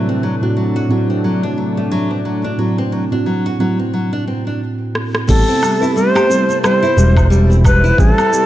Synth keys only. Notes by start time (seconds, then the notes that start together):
Already playing: A2 C4 E4 F#4
0.41 A2 C4 E4 F#4
0.88 A2 C4 E4
0.92 F#4
2.58 A2 C4 E4 F#4
3.11 A2 C4 E4 F#4
3.58 A2 C4 E4 F#4
5.28 B3 C4 G4
5.80 C4 G4 B4
6.27 C4 C5
6.31 G4
7.97 C4 G4 B4